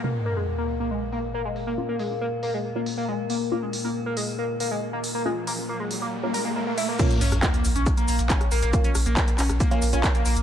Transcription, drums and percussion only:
0.04 crash medium
0.25 open hi-hat loud
0.69 open hi-hat loud
1.13 open hi-hat loud
1.56 open hi-hat loud
1.99 open hi-hat loud
2.43 open hi-hat loud
2.86 open hi-hat loud
3.30 open hi-hat loud
3.73 open hi-hat loud
4.17 open hi-hat loud
4.60 open hi-hat loud
5.04 open hi-hat loud
5.47 open hi-hat loud
5.91 open hi-hat loud
6.34 open hi-hat loud
6.78 open hi-hat loud
6.99 kick loud
6.99 closed hi-hat medium
6.99 crash loud
6.99 shaker soft
6.99 shaker medium
7.10 closed hi-hat medium
7.10 shaker soft
7.21 open hi-hat medium
7.21 open hi-hat loud
7.21 shaker medium
7.32 cross-stick medium
7.32 closed hi-hat medium
7.32 shaker soft
7.43 kick loud
7.43 snare loud
7.43 clap loud
7.43 closed hi-hat medium
7.43 shaker medium
7.43 shaker soft
7.54 snare soft
7.54 closed hi-hat medium
7.54 shaker soft
7.65 open hi-hat loud
7.65 shaker medium
7.76 closed hi-hat medium
7.76 shaker soft
7.86 kick loud
7.86 cross-stick medium
7.86 closed hi-hat medium
7.86 shaker medium
7.86 shaker soft
7.97 closed hi-hat medium
7.97 shaker soft
8.08 open hi-hat loud
8.08 shaker medium
8.19 closed hi-hat soft
8.19 closed hi-hat medium
8.19 shaker soft
8.30 kick loud
8.30 snare loud
8.30 clap loud
8.30 closed hi-hat medium
8.30 shaker medium
8.30 shaker soft
8.41 cross-stick medium
8.41 closed hi-hat medium
8.41 shaker soft
8.52 open hi-hat loud
8.52 shaker medium
8.63 snare soft
8.63 closed hi-hat medium
8.63 shaker soft
8.73 kick loud
8.73 closed hi-hat medium
8.73 shaker medium
8.73 shaker soft
8.84 closed hi-hat medium
8.84 shaker soft
8.95 cross-stick medium
8.95 open hi-hat loud
8.95 shaker medium
9.06 closed hi-hat medium
9.06 shaker soft
9.17 kick loud
9.17 snare loud
9.17 clap loud
9.17 closed hi-hat medium
9.17 shaker medium
9.17 shaker soft
9.28 closed hi-hat medium
9.28 shaker soft
9.39 clap medium
9.39 open hi-hat loud
9.39 shaker medium
9.49 cross-stick medium
9.49 snare soft
9.49 closed hi-hat medium
9.49 shaker soft
9.60 kick loud
9.60 closed hi-hat medium
9.60 shaker medium
9.60 shaker soft
9.71 snare medium
9.71 closed hi-hat medium
9.71 shaker soft
9.82 open hi-hat loud
9.82 shaker medium
9.93 closed hi-hat medium
9.93 shaker soft
10.04 kick loud
10.04 cross-stick medium
10.04 snare loud
10.04 clap loud
10.04 closed hi-hat medium
10.04 shaker medium
10.04 shaker soft
10.15 closed hi-hat medium
10.15 shaker soft
10.25 open hi-hat loud
10.25 shaker medium
10.37 closed hi-hat medium
10.37 shaker soft

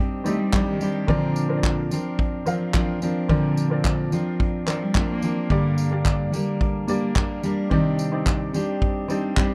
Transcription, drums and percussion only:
0.26 tambourine medium
0.53 kick loud
0.53 clap loud
0.81 tambourine medium
1.08 kick medium
1.36 tambourine medium
1.63 kick loud
1.63 clap loud
1.91 tambourine medium
2.19 kick loud
2.46 tambourine medium
2.74 kick loud
2.74 clap loud
3.02 tambourine medium
3.29 kick medium
3.57 tambourine medium
3.85 kick loud
3.85 clap loud
4.12 tambourine medium
4.40 kick loud
4.67 clap medium
4.67 tambourine medium
4.95 kick loud
4.95 clap loud
5.22 tambourine medium
5.50 kick loud
5.78 tambourine medium
6.05 kick loud
6.05 clap loud
6.34 tambourine medium
6.61 kick loud
6.88 tambourine medium
7.16 kick loud
7.16 clap loud
7.43 tambourine medium
7.71 kick medium
7.99 tambourine medium
8.26 kick loud
8.26 clap loud
8.54 tambourine medium
8.82 kick loud
9.10 tambourine medium
9.37 kick loud
9.37 clap loud

